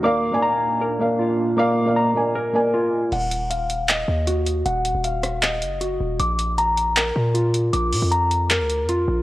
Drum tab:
CC |--------|--------|x-------|--------|
HH |--------|--------|xxxxx-xx|xxxxxxx-|
CP |--------|--------|----x---|----x---|
SD |--------|--------|--------|---r----|

CC |--------|--------|
HH |xxxxx-xx|xoxxxxx-|
CP |----x---|----x---|
SD |--------|--------|